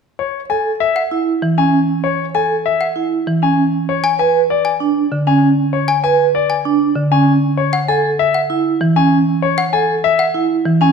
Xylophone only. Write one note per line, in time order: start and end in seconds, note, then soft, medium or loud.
0.96 1.16 F#5 medium
2.81 3.01 F#5 soft
4.04 4.24 G#5 medium
4.65 4.85 G#5 medium
5.88 6.08 G#5 medium
6.50 6.70 G#5 soft
7.73 7.93 F#5 medium
8.34 8.55 F#5 medium
9.58 9.78 F#5 medium
10.19 10.39 F#5 medium